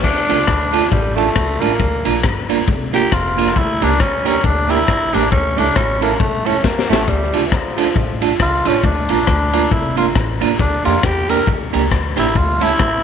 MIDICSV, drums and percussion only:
0, 0, Header, 1, 2, 480
1, 0, Start_track
1, 0, Key_signature, -1, "minor"
1, 0, Tempo, 439560
1, 47, Time_signature, 4, 2, 24, 8
1, 14233, End_track
2, 0, Start_track
2, 0, Title_t, "Drums"
2, 41, Note_on_c, 9, 49, 105
2, 43, Note_on_c, 9, 36, 115
2, 150, Note_off_c, 9, 49, 0
2, 152, Note_off_c, 9, 36, 0
2, 322, Note_on_c, 9, 51, 78
2, 431, Note_off_c, 9, 51, 0
2, 518, Note_on_c, 9, 37, 114
2, 523, Note_on_c, 9, 36, 113
2, 627, Note_off_c, 9, 37, 0
2, 632, Note_off_c, 9, 36, 0
2, 804, Note_on_c, 9, 51, 78
2, 913, Note_off_c, 9, 51, 0
2, 1002, Note_on_c, 9, 36, 126
2, 1111, Note_off_c, 9, 36, 0
2, 1288, Note_on_c, 9, 51, 62
2, 1397, Note_off_c, 9, 51, 0
2, 1482, Note_on_c, 9, 37, 111
2, 1483, Note_on_c, 9, 36, 102
2, 1591, Note_off_c, 9, 37, 0
2, 1593, Note_off_c, 9, 36, 0
2, 1762, Note_on_c, 9, 51, 74
2, 1872, Note_off_c, 9, 51, 0
2, 1962, Note_on_c, 9, 36, 113
2, 2071, Note_off_c, 9, 36, 0
2, 2240, Note_on_c, 9, 51, 75
2, 2349, Note_off_c, 9, 51, 0
2, 2441, Note_on_c, 9, 37, 121
2, 2445, Note_on_c, 9, 36, 111
2, 2550, Note_off_c, 9, 37, 0
2, 2554, Note_off_c, 9, 36, 0
2, 2725, Note_on_c, 9, 51, 78
2, 2834, Note_off_c, 9, 51, 0
2, 2924, Note_on_c, 9, 36, 120
2, 3033, Note_off_c, 9, 36, 0
2, 3206, Note_on_c, 9, 51, 62
2, 3315, Note_off_c, 9, 51, 0
2, 3408, Note_on_c, 9, 36, 107
2, 3408, Note_on_c, 9, 37, 124
2, 3517, Note_off_c, 9, 36, 0
2, 3517, Note_off_c, 9, 37, 0
2, 3693, Note_on_c, 9, 51, 72
2, 3794, Note_on_c, 9, 37, 65
2, 3803, Note_off_c, 9, 51, 0
2, 3888, Note_on_c, 9, 36, 113
2, 3903, Note_off_c, 9, 37, 0
2, 3997, Note_off_c, 9, 36, 0
2, 4170, Note_on_c, 9, 51, 78
2, 4279, Note_off_c, 9, 51, 0
2, 4367, Note_on_c, 9, 37, 119
2, 4370, Note_on_c, 9, 36, 118
2, 4476, Note_off_c, 9, 37, 0
2, 4479, Note_off_c, 9, 36, 0
2, 4650, Note_on_c, 9, 51, 79
2, 4759, Note_off_c, 9, 51, 0
2, 4849, Note_on_c, 9, 36, 116
2, 4958, Note_off_c, 9, 36, 0
2, 5133, Note_on_c, 9, 51, 61
2, 5242, Note_off_c, 9, 51, 0
2, 5331, Note_on_c, 9, 36, 102
2, 5331, Note_on_c, 9, 37, 120
2, 5440, Note_off_c, 9, 36, 0
2, 5441, Note_off_c, 9, 37, 0
2, 5616, Note_on_c, 9, 51, 75
2, 5725, Note_off_c, 9, 51, 0
2, 5810, Note_on_c, 9, 36, 119
2, 5920, Note_off_c, 9, 36, 0
2, 6091, Note_on_c, 9, 51, 76
2, 6200, Note_off_c, 9, 51, 0
2, 6289, Note_on_c, 9, 37, 119
2, 6292, Note_on_c, 9, 36, 110
2, 6398, Note_off_c, 9, 37, 0
2, 6401, Note_off_c, 9, 36, 0
2, 6574, Note_on_c, 9, 51, 72
2, 6684, Note_off_c, 9, 51, 0
2, 6771, Note_on_c, 9, 36, 119
2, 6880, Note_off_c, 9, 36, 0
2, 7057, Note_on_c, 9, 51, 67
2, 7167, Note_off_c, 9, 51, 0
2, 7252, Note_on_c, 9, 36, 103
2, 7252, Note_on_c, 9, 38, 56
2, 7361, Note_off_c, 9, 38, 0
2, 7362, Note_off_c, 9, 36, 0
2, 7412, Note_on_c, 9, 38, 75
2, 7521, Note_off_c, 9, 38, 0
2, 7567, Note_on_c, 9, 38, 105
2, 7677, Note_off_c, 9, 38, 0
2, 7730, Note_on_c, 9, 36, 118
2, 7839, Note_off_c, 9, 36, 0
2, 8010, Note_on_c, 9, 51, 81
2, 8119, Note_off_c, 9, 51, 0
2, 8211, Note_on_c, 9, 37, 106
2, 8212, Note_on_c, 9, 36, 115
2, 8321, Note_off_c, 9, 36, 0
2, 8321, Note_off_c, 9, 37, 0
2, 8493, Note_on_c, 9, 51, 79
2, 8602, Note_off_c, 9, 51, 0
2, 8689, Note_on_c, 9, 36, 122
2, 8798, Note_off_c, 9, 36, 0
2, 8973, Note_on_c, 9, 51, 63
2, 9082, Note_off_c, 9, 51, 0
2, 9170, Note_on_c, 9, 36, 104
2, 9171, Note_on_c, 9, 37, 117
2, 9279, Note_off_c, 9, 36, 0
2, 9280, Note_off_c, 9, 37, 0
2, 9448, Note_on_c, 9, 51, 76
2, 9557, Note_off_c, 9, 51, 0
2, 9648, Note_on_c, 9, 36, 109
2, 9758, Note_off_c, 9, 36, 0
2, 9924, Note_on_c, 9, 51, 74
2, 10033, Note_off_c, 9, 51, 0
2, 10126, Note_on_c, 9, 37, 107
2, 10129, Note_on_c, 9, 36, 117
2, 10235, Note_off_c, 9, 37, 0
2, 10238, Note_off_c, 9, 36, 0
2, 10411, Note_on_c, 9, 51, 82
2, 10520, Note_off_c, 9, 51, 0
2, 10608, Note_on_c, 9, 36, 124
2, 10717, Note_off_c, 9, 36, 0
2, 10889, Note_on_c, 9, 51, 63
2, 10998, Note_off_c, 9, 51, 0
2, 11089, Note_on_c, 9, 36, 107
2, 11089, Note_on_c, 9, 37, 119
2, 11198, Note_off_c, 9, 37, 0
2, 11199, Note_off_c, 9, 36, 0
2, 11371, Note_on_c, 9, 51, 76
2, 11480, Note_off_c, 9, 51, 0
2, 11569, Note_on_c, 9, 36, 117
2, 11678, Note_off_c, 9, 36, 0
2, 11849, Note_on_c, 9, 51, 76
2, 11958, Note_off_c, 9, 51, 0
2, 12048, Note_on_c, 9, 37, 115
2, 12050, Note_on_c, 9, 36, 123
2, 12157, Note_off_c, 9, 37, 0
2, 12159, Note_off_c, 9, 36, 0
2, 12332, Note_on_c, 9, 51, 79
2, 12442, Note_off_c, 9, 51, 0
2, 12529, Note_on_c, 9, 36, 123
2, 12638, Note_off_c, 9, 36, 0
2, 12817, Note_on_c, 9, 51, 69
2, 12926, Note_off_c, 9, 51, 0
2, 13010, Note_on_c, 9, 36, 104
2, 13012, Note_on_c, 9, 37, 120
2, 13120, Note_off_c, 9, 36, 0
2, 13121, Note_off_c, 9, 37, 0
2, 13287, Note_on_c, 9, 37, 61
2, 13294, Note_on_c, 9, 51, 75
2, 13396, Note_off_c, 9, 37, 0
2, 13403, Note_off_c, 9, 51, 0
2, 13490, Note_on_c, 9, 36, 119
2, 13599, Note_off_c, 9, 36, 0
2, 13774, Note_on_c, 9, 51, 76
2, 13883, Note_off_c, 9, 51, 0
2, 13972, Note_on_c, 9, 37, 112
2, 13974, Note_on_c, 9, 36, 112
2, 14081, Note_off_c, 9, 37, 0
2, 14083, Note_off_c, 9, 36, 0
2, 14233, End_track
0, 0, End_of_file